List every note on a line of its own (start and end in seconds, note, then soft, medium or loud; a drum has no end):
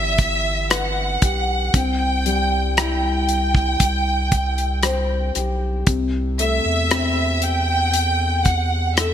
0.00 1.18 G1 medium
0.00 1.69 E3 soft
0.00 0.14 B3 soft
0.00 0.66 G4 soft
0.00 0.71 E5 medium
0.18 kick medium
0.18 closed hi-hat soft
0.70 1.71 B4 soft
0.70 1.74 F#5 medium
0.70 cross-stick medium
0.70 closed hi-hat medium
1.22 1.70 B1 medium
1.22 1.72 G4 soft
1.22 kick medium
1.22 closed hi-hat medium
1.74 3.77 C2 medium
1.74 5.84 C4 soft
1.74 2.78 G5 medium
1.74 kick medium
1.74 closed hi-hat medium
2.26 4.29 G3 soft
2.26 closed hi-hat medium
2.77 4.81 E4 soft
2.77 5.33 G5 medium
2.77 cross-stick medium
2.77 closed hi-hat medium
3.29 closed hi-hat medium
3.55 kick medium
3.80 5.32 C2 medium
3.80 kick medium
3.80 closed hi-hat medium
4.32 kick medium
4.32 closed hi-hat medium
4.58 closed hi-hat soft
4.83 5.85 C5 soft
4.83 cross-stick medium
4.83 closed hi-hat medium
5.35 5.84 B1 medium
5.35 5.86 G4 soft
5.35 cross-stick soft
5.35 closed hi-hat medium
5.87 6.61 C2 medium
5.87 9.14 C3 soft
5.87 kick medium
5.87 closed hi-hat medium
6.39 8.42 A3 soft
6.39 7.39 E5 medium
6.39 closed hi-hat medium
6.65 9.14 E2 medium
6.91 8.94 C4 soft
6.91 cross-stick medium
6.91 closed hi-hat medium
7.41 8.45 G5 medium
7.41 closed hi-hat medium
7.94 closed hi-hat medium
8.44 8.97 F#5 medium
8.44 kick medium
8.44 closed hi-hat soft
8.96 9.14 A4 soft
8.96 9.14 E5 medium
8.96 cross-stick medium
8.96 closed hi-hat medium